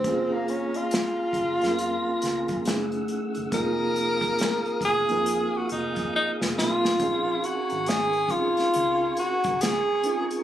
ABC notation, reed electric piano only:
X:1
M:4/4
L:1/16
Q:"Swing 16ths" 1/4=69
K:Bbm
V:1 name="Reed electric piano"
[B,CDFA]6 z [B,CDFAB]4- [B,CDFAB] [A,=A,DE_F_A]3 z | [B,CEFA]6 z [B,CEFB]6 z [B,CEFB]2 | [CDEAf]4- [CDEAf] z [CDEAf]6- [CDEAf] z [CDEFA]2 |]